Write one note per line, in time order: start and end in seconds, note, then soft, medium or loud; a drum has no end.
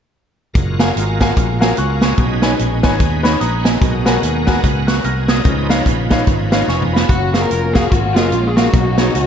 0.54 0.90 F#1 medium
0.54 2.15 G#3 medium
0.54 2.15 F4 medium
0.54 2.15 F#4 medium
0.54 2.15 A#4 medium
0.54 kick medium
0.54 closed hi-hat medium
0.79 0.89 F#4 medium
0.79 0.89 A#4 medium
0.79 0.90 F5 medium
0.79 0.90 G#5 medium
0.79 snare medium
0.79 closed hi-hat medium
0.96 1.31 G#1 medium
0.96 closed hi-hat medium
1.20 1.30 F#4 medium
1.20 1.31 A#4 medium
1.20 1.31 F5 medium
1.20 1.31 G#5 medium
1.20 kick medium
1.20 snare loud
1.20 closed hi-hat medium
1.37 1.71 A#1 medium
1.37 kick loud
1.37 closed hi-hat medium
1.60 1.71 F#4 medium
1.60 1.71 A#4 medium
1.60 1.71 F5 medium
1.60 1.71 G#5 medium
1.60 snare medium
1.60 closed hi-hat medium
1.77 2.13 C#2 medium
1.77 2.01 C#6 soft
1.77 2.01 F#6 medium
1.77 closed hi-hat medium
2.02 2.41 G#5 medium
2.02 2.41 C#6 medium
2.02 snare medium
2.02 closed hi-hat medium
2.18 2.53 B1 loud
2.18 2.80 B2 medium
2.18 3.79 G#3 medium
2.18 3.79 C#4 medium
2.18 3.79 D#4 medium
2.18 3.79 B4 medium
2.18 kick loud
2.18 closed hi-hat medium
2.42 2.52 D#4 medium
2.42 2.53 B4 medium
2.42 2.53 C#5 medium
2.42 2.53 G#5 medium
2.42 snare medium
2.42 closed hi-hat medium
2.59 2.84 A#1 medium
2.59 closed hi-hat medium
2.83 2.98 G#1 medium
2.83 2.93 D#4 medium
2.83 2.94 B4 medium
2.83 2.94 C#5 medium
2.83 2.94 G#5 medium
2.83 kick medium
2.83 snare loud
2.83 closed hi-hat soft
3.00 3.35 D#2 medium
3.00 kick loud
3.00 closed hi-hat medium
3.23 3.34 D#4 medium
3.23 3.34 B4 medium
3.23 3.34 C#5 medium
3.23 3.34 B5 medium
3.23 snare medium
3.23 closed hi-hat medium
3.40 3.76 A#1 medium
3.40 3.64 F#5 medium
3.40 3.64 A#5 medium
3.40 3.64 D#6 medium
3.40 closed hi-hat medium
3.65 4.04 D#5 medium
3.65 4.05 D#5 medium
3.65 4.04 G#5 medium
3.65 snare loud
3.65 closed hi-hat medium
3.81 4.16 B1 loud
3.81 4.43 B2 medium
3.81 5.42 G#3 medium
3.81 5.42 B3 medium
3.81 5.42 F#4 medium
3.81 5.43 A#4 medium
3.81 kick loud
3.81 closed hi-hat medium
4.05 4.16 F#4 medium
4.05 4.16 A#4 medium
4.05 4.16 B4 medium
4.05 4.16 G#5 medium
4.05 snare medium
4.05 closed hi-hat medium
4.22 4.57 D#2 medium
4.22 closed hi-hat medium
4.47 4.57 F#4 medium
4.47 4.57 A#4 medium
4.47 4.57 B4 medium
4.47 4.57 G#5 medium
4.47 kick medium
4.47 snare loud
4.47 closed hi-hat soft
4.64 4.98 C#2 medium
4.64 kick loud
4.64 closed hi-hat medium
4.87 5.04 C#6 medium
4.87 5.03 F#6 medium
4.87 snare loud
4.87 closed hi-hat medium
5.04 5.39 C2 medium
5.04 5.28 G#5 medium
5.04 5.28 F6 medium
5.04 5.28 A#6 medium
5.04 closed hi-hat medium
5.28 5.67 D#5 medium
5.28 5.68 D#6 medium
5.28 5.68 G#6 medium
5.28 snare loud
5.28 closed hi-hat medium
5.44 5.80 C#2 medium
5.44 6.07 C#3 medium
5.44 7.05 F3 medium
5.44 7.05 C#4 medium
5.44 7.05 D#4 medium
5.44 5.51 A#4 medium
5.44 kick loud
5.44 closed hi-hat medium
5.49 7.08 B4 medium
5.69 5.80 D#4 medium
5.69 5.80 B4 medium
5.69 5.80 C#5 medium
5.69 5.80 F5 medium
5.69 snare loud
5.69 closed hi-hat medium
5.86 6.21 A#1 medium
5.86 kick medium
5.86 closed hi-hat medium
6.11 6.21 D#4 medium
6.11 6.21 B4 medium
6.11 6.21 C#5 medium
6.11 6.21 F5 medium
6.11 kick medium
6.11 snare loud
6.11 closed hi-hat medium
6.27 6.62 G#1 medium
6.27 kick loud
6.27 closed hi-hat medium
6.52 6.62 D#4 medium
6.52 6.62 B4 medium
6.52 6.62 C#5 medium
6.52 6.62 F5 medium
6.52 snare loud
6.52 closed hi-hat medium
6.68 7.03 F1 medium
6.68 6.92 G#5 soft
6.68 6.92 C#6 medium
6.68 snare soft
6.82 mid tom medium
6.93 7.32 F5 soft
6.93 7.32 B5 medium
6.93 snare medium
7.09 7.44 F#1 loud
7.09 7.88 A#3 medium
7.09 7.42 C#4 medium
7.09 7.43 F#4 medium
7.09 7.40 F#4 medium
7.09 kick loud
7.09 closed hi-hat medium
7.33 7.43 A#3 medium
7.33 7.44 F#4 medium
7.33 7.44 G#4 medium
7.33 7.44 F5 medium
7.33 snare medium
7.33 closed hi-hat medium
7.41 7.92 C#4 medium
7.41 8.14 F4 medium
7.41 7.75 A#4 medium
7.51 7.85 F1 medium
7.51 closed hi-hat medium
7.73 7.84 A#3 medium
7.73 7.85 F#4 medium
7.73 7.91 G#4 medium
7.73 7.85 G#4 medium
7.73 7.85 F5 medium
7.73 kick medium
7.73 snare medium
7.73 closed hi-hat medium
7.90 8.16 G#1 medium
7.90 8.16 A#3 medium
7.90 8.57 C#4 medium
7.90 7.96 F#4 medium
7.90 8.15 F#4 medium
7.90 kick loud
7.90 closed hi-hat medium
8.15 8.30 F#1 medium
8.15 8.70 G#3 medium
8.15 8.26 A#3 medium
8.15 8.70 A#3 medium
8.15 8.49 F4 medium
8.15 8.56 F4 medium
8.15 8.26 F#4 medium
8.15 8.26 G#4 medium
8.15 8.26 D#5 medium
8.15 snare loud
8.15 closed hi-hat medium
8.32 8.67 A#1 medium
8.32 closed hi-hat medium
8.47 8.56 G#4 medium
8.56 8.67 A#3 medium
8.56 9.27 C#4 medium
8.56 9.27 D#4 medium
8.56 9.27 F#4 medium
8.56 8.67 F#4 medium
8.56 8.67 G#4 medium
8.56 8.67 F5 medium
8.56 snare loud
8.56 closed hi-hat medium
8.74 9.08 B1 loud
8.74 9.27 B2 medium
8.74 kick loud
8.74 closed hi-hat medium
8.98 9.08 B3 medium
8.98 9.08 D#4 medium
8.98 9.08 G#4 medium
8.98 9.08 C#5 medium
8.98 snare medium
8.98 closed hi-hat medium
9.14 9.27 C#2 medium
9.14 closed hi-hat medium